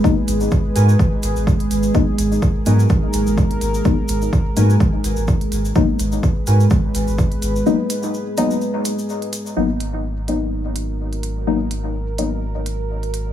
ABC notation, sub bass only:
X:1
M:4/4
L:1/16
Q:"Swing 16ths" 1/4=126
K:G#m
V:1 name="Sub bass" clef=bass
z2 G,,,2 z2 G,,2 z2 G,,, G,,,2 z G,,,2 | z2 G,,,2 z2 G,,2 z2 G,,, G,,,2 z G,,,2 | z2 G,,,2 z2 G,,2 z2 G,,, G,,,2 z G,,,2 | z2 G,,,2 z2 G,,2 z2 G,,, G,,,2 z G,,,2 |
z16 | G,,,16- | G,,,16 |]